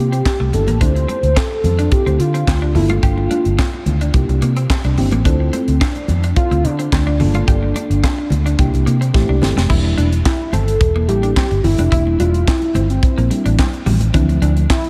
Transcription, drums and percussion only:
0.13 closed hi-hat
0.25 kick, snare, clap, muted conga
0.53 closed hi-hat, low conga
0.67 closed hi-hat, high conga
0.81 kick, closed hi-hat
0.96 closed hi-hat
1.09 closed hi-hat, high conga
1.23 closed hi-hat
1.37 kick, snare, clap, muted conga
1.64 closed hi-hat, high conga, low conga
1.79 closed hi-hat
1.92 kick, closed hi-hat, muted conga
2.07 closed hi-hat, muted conga
2.20 closed hi-hat
2.35 closed hi-hat
2.47 kick, snare, clap
2.75 open hi-hat, low conga
2.89 closed hi-hat, high conga
3.03 kick, closed hi-hat, muted conga
3.18 muted conga
3.31 closed hi-hat, high conga
3.45 closed hi-hat
3.59 kick, snare, clap, muted conga
3.74 muted conga
3.86 closed hi-hat, high conga, low conga
4.01 closed hi-hat
4.14 kick, closed hi-hat, muted conga
4.29 closed hi-hat, muted conga
4.42 closed hi-hat
4.56 closed hi-hat
4.70 kick, snare, clap, muted conga
4.84 closed hi-hat, muted conga
4.97 open hi-hat, low conga
5.11 closed hi-hat, high conga
5.25 kick, closed hi-hat
5.53 closed hi-hat, high conga
5.68 closed hi-hat
5.81 kick, snare, clap, muted conga
5.95 closed hi-hat, muted conga
6.08 closed hi-hat, high conga, low conga
6.24 closed hi-hat
6.36 kick, closed hi-hat, muted conga
6.51 closed hi-hat, muted conga
6.65 closed hi-hat
6.79 closed hi-hat
6.92 kick, snare, clap, muted conga
7.07 muted conga
7.20 open hi-hat, low conga
7.34 closed hi-hat, high conga
7.47 kick, closed hi-hat, muted conga
7.75 closed hi-hat, high conga
7.91 closed hi-hat
8.04 kick, snare, clap, muted conga
8.30 closed hi-hat, high conga, low conga
8.46 closed hi-hat
8.59 kick, closed hi-hat
8.74 closed hi-hat, muted conga
8.87 closed hi-hat
9.02 closed hi-hat
9.14 kick, snare, muted conga
9.29 muted conga
9.42 snare, low conga
9.56 snare, high conga
9.69 kick, crash, low conga
9.98 closed hi-hat, high conga
10.12 closed hi-hat
10.25 kick, snare, clap, muted conga
10.53 closed hi-hat, high conga, low conga
10.68 closed hi-hat
10.81 kick, closed hi-hat
10.96 muted conga
11.09 closed hi-hat
11.23 closed hi-hat
11.36 kick, snare, clap
11.51 closed hi-hat
11.64 open hi-hat, low conga
11.78 closed hi-hat, high conga
11.92 kick, closed hi-hat, muted conga, low conga
12.07 muted conga
12.20 closed hi-hat, high conga
12.34 closed hi-hat
12.48 kick, snare, clap, muted conga
12.62 closed hi-hat, muted conga
12.75 closed hi-hat, high conga, low conga
12.90 closed hi-hat
13.03 kick, closed hi-hat, muted conga
13.18 closed hi-hat, muted conga
13.31 closed hi-hat
13.46 closed hi-hat
13.59 kick, snare, clap
13.73 closed hi-hat
13.86 open hi-hat, low conga
14.00 closed hi-hat, high conga
14.14 kick, closed hi-hat, muted conga, low conga
14.29 closed hi-hat, muted conga
14.42 closed hi-hat, high conga
14.57 closed hi-hat
14.70 kick, snare, clap, muted conga
14.84 closed hi-hat

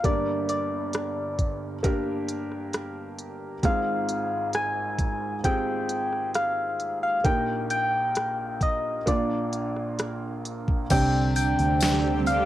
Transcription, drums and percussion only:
0.04 kick, closed hi-hat
0.49 closed hi-hat
0.93 cross-stick, closed hi-hat
1.39 kick, closed hi-hat
1.84 kick, closed hi-hat
2.28 closed hi-hat
2.52 cross-stick
2.73 cross-stick, closed hi-hat
3.19 closed hi-hat
3.63 kick, closed hi-hat
4.09 closed hi-hat
4.53 cross-stick, closed hi-hat
4.99 kick, closed hi-hat
5.44 kick, closed hi-hat
5.89 closed hi-hat
6.13 cross-stick
6.34 cross-stick, closed hi-hat
6.80 closed hi-hat
7.25 kick, closed hi-hat
7.70 closed hi-hat
8.15 cross-stick, closed hi-hat
8.61 kick, closed hi-hat
9.07 kick, closed hi-hat
9.53 closed hi-hat
9.76 cross-stick
9.99 cross-stick, closed hi-hat
10.45 closed hi-hat
10.68 kick
10.90 kick, open hi-hat, crash, tambourine
11.36 open hi-hat, tambourine
11.59 open hi-hat
11.81 snare, open hi-hat, tambourine
12.26 open hi-hat, tambourine

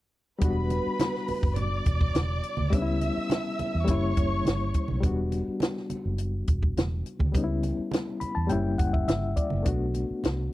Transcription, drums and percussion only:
0.41 kick, closed hi-hat, muted conga
0.70 closed hi-hat, muted conga
1.00 snare, closed hi-hat, high conga
1.15 snare
1.28 open hi-hat, muted conga
1.43 kick
1.56 closed hi-hat, low conga
1.85 kick, closed hi-hat, muted conga
2.01 kick
2.15 snare, closed hi-hat, high conga
2.43 closed hi-hat
2.57 high conga
2.73 kick, closed hi-hat, muted conga
3.01 closed hi-hat, muted conga
3.30 snare, closed hi-hat, high conga
3.59 closed hi-hat, muted conga
3.87 kick, closed hi-hat
4.16 kick, closed hi-hat, muted conga
4.45 snare, closed hi-hat, high conga
4.74 kick, closed hi-hat
4.88 high conga
5.03 kick, closed hi-hat, muted conga
5.32 closed hi-hat, muted conga
5.60 snare, closed hi-hat, high conga
5.77 snare
5.90 closed hi-hat, muted conga
6.18 closed hi-hat
6.47 kick, closed hi-hat
6.63 kick
6.77 snare, closed hi-hat, high conga
7.06 closed hi-hat
7.19 kick, high conga
7.34 kick, closed hi-hat, muted conga
7.63 closed hi-hat, muted conga
7.91 snare, closed hi-hat, high conga
8.21 closed hi-hat, muted conga
8.49 closed hi-hat, low conga
8.78 kick, closed hi-hat, muted conga
8.94 kick
9.08 snare, closed hi-hat, high conga
9.36 kick, closed hi-hat
9.50 high conga
9.65 kick, closed hi-hat, muted conga
9.94 closed hi-hat, muted conga
10.24 snare, closed hi-hat, high conga

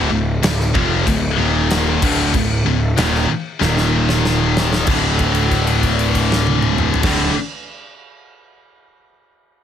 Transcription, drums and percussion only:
0.43 snare, crash
0.60 snare
0.75 kick
1.07 kick, crash
1.70 snare, crash
2.02 kick, crash
2.34 kick, crash
2.98 snare, crash
3.15 snare
3.62 snare
3.77 snare
4.09 snare
4.25 snare
4.57 snare
4.73 snare
4.87 kick, crash
5.19 kick, crash
5.35 crash
5.51 kick, crash
5.67 crash
5.83 kick, crash
5.99 crash
6.15 kick, crash
6.32 snare
6.47 high tom
6.62 mid tom
6.78 mid tom
6.94 floor tom
7.03 kick, snare, crash

